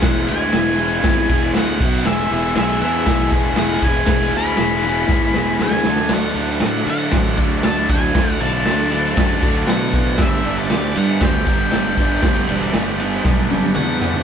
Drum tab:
CC |--------------x-|----------------|----------------|x---------------|
RD |x-x-x-x-x-x-x---|--x-x-x-x-x-x-x-|x-x-x-x---------|x-x-x-x-x-x-x-x-|
SD |o---o---o---o---|o---o---o---o---|o---o---o-o-oooo|o---o---o---o---|
T1 |----------------|----------------|----------------|----------------|
T2 |----------------|----------------|----------------|----------------|
FT |----------------|----------------|----------------|----------------|
BD |o-------o-o---o-|--------o-o---o-|o-------o-------|--------o-o---o-|

CC |----------------|----------------|----------------|
RD |x-x-x-x-x-x-x-x-|x-x-x-x-x-x-x-x-|x-x-x-x---------|
SD |o---o---o---o---|o---o---o---o---|o---o---o-------|
T1 |----------------|----------------|----------oo----|
T2 |----------------|----------------|------------o---|
FT |----------------|----------------|--------------oo|
BD |o-------o-o---o-|o-------o-o---o-|o-------o-------|